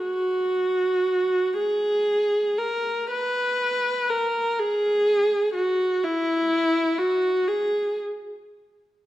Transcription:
X:1
M:6/8
L:1/8
Q:3/8=40
K:G#m
V:1 name="Viola"
F3 G2 A | B2 A G2 F | E2 F G z2 |]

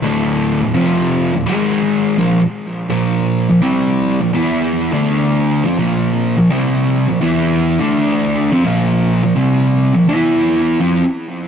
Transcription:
X:1
M:4/4
L:1/16
Q:"Swing" 1/4=84
K:Bblyd
V:1 name="Distorted electric guitar" clef=bass
[D,,A,,D,]3 [D,,A,,] [F,,C,F,]3 [D,,A,,] [^G,,^D,^G,]4 [B,,F,] z3 | [B,,F,B,]3 [B,,F,] [C,G,C]3 [B,,F,] [E,=B,E]3 [D,A,D]4 [F,C] | [B,,F,B,]3 [B,,F,] [C,G,C]3 [B,,F,] [E,=B,E]3 [D,A,D]4 [F,C] | [B,,F,B,]3 [B,,F,] [C,G,C]3 [B,,F,] [E,=B,E]4 [F,C] z3 |]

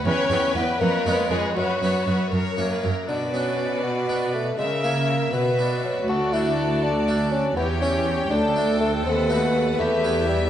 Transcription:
X:1
M:6/8
L:1/16
Q:3/8=80
K:Bm
V:1 name="Violin section"
g2 g2 g2 c2 c2 c2 | c2 c2 c2 c3 B ^A2 | d12 | e12 |
d12 | g12 | [K:Em] f6 e6 |]
V:2 name="Violin section"
c4 B2 ^A4 ^G2 | F6 z6 | B12 | e6 B6 |
A12 | c6 A6 | [K:Em] B12 |]
V:3 name="Viola section"
B2 B2 B2 B2 B2 B2 | B2 B2 B2 ^A2 A2 A2 | F12 | ^A6 F6- |
F12 | G6 A6- | [K:Em] A6 G6 |]
V:4 name="Bassoon"
C4 B,2 ^A,4 ^G,2 | F,6 z6 | D2 C4 B,4 A,2 | ^G,2 ^A,4 B,4 F,2 |
F2 E4 D4 C2 | B,2 C4 D4 A,2 | [K:Em] C2 B,4 A,4 G,2 |]
V:5 name="Harpsichord"
z2 [B,C]4 z2 [^G,B,C]4 | z2 [B,C]4 z2 [^A,C]4 | z2 [B,D]6 [B,D]4 | z2 [^A,E]4 z2 [B,D]4 |
z2 [A,D]6 [A,D]4 | z2 [CG]4 z2 [A,D]4 | [K:Em] z2 [A,B,F]4 z2 [B,E]4 |]
V:6 name="Harpsichord" clef=bass
E,,2 E,,2 E,,2 ^E,,2 E,,2 E,,2 | F,,2 F,,2 F,,2 F,,2 F,,2 F,,2 | B,,12 | C,6 B,,6 |
D,,12 | E,,6 D,,6 | [K:Em] ^D,,6 E,,6 |]
V:7 name="Cello section" clef=bass
E,,2 E,,2 E,,2 ^E,,2 E,,2 E,,2 | F,,2 F,,2 F,,2 F,,2 F,,2 F,,2 | B,,12 | C,6 B,,6 |
D,,12 | E,,6 D,,6 | [K:Em] ^D,,6 E,,6 |]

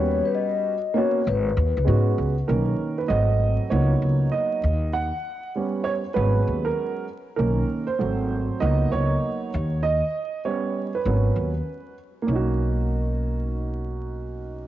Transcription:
X:1
M:4/4
L:1/16
Q:"Swing 16ths" 1/4=98
K:B
V:1 name="Vibraphone"
c B d4 c2 B6 z2 | z16 | z16 | z16 |
z16 | z16 |]
V:2 name="Upright piano"
[=G,B,CF]4 z2 [A,B,CF]2 z4 [^G,B,CF]2 z2 | A3 B d4 c4 d4 | f4 z2 c2 B3 A3 z2 | A3 =c4- c d2 ^c6 |
d4 c3 B6- B z2 | [A,CDF]16 |]
V:3 name="Upright piano"
z16 | [D,A,C]4 [F,=A,^B,]4 [F,^A,=B,D]6 z2 | z4 [=G,B,C]2 z2 [F,^G,B,C]6 z2 | [D,A,C]2 z2 [F,=A,^B,]4 [F,^A,=B,D]6 z2 |
z4 [=G,B,C]2 z2 [F,B,CA]2 z6 | z16 |]
V:4 name="Upright bass" clef=bass
D,,2 z6 G,,,2 D,, C,, G,,2 C,,2 | B,,,2 z2 G,,,4 C,,2 C,,2 z2 D,,2- | D,,2 z6 G,,,2 D,,2 z4 | B,,,2 z2 G,,,4 C,,2 C,,2 z2 D,,2- |
D,,2 z6 G,,,2 D,,2 z4 | B,,,16 |]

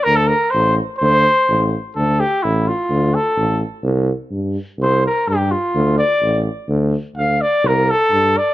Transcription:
X:1
M:2/4
L:1/16
Q:"Swing 16ths" 1/4=127
K:Dm
V:1 name="Trumpet"
B A B2 c2 z2 | c6 z2 | A2 G2 E2 F2- | F2 A4 z2 |
z8 | c2 B2 G2 F2- | F2 d4 z2 | z4 f2 d2 |
B2 A4 d2 |]
V:2 name="Tuba" clef=bass
D,,4 A,,,4 | D,,4 A,,,4 | D,,4 A,,,4 | D,,4 A,,,4 |
C,,4 G,,4 | C,,4 G,,4 | D,,4 A,,,4 | D,,4 D,,4 |
C,,4 G,,4 |]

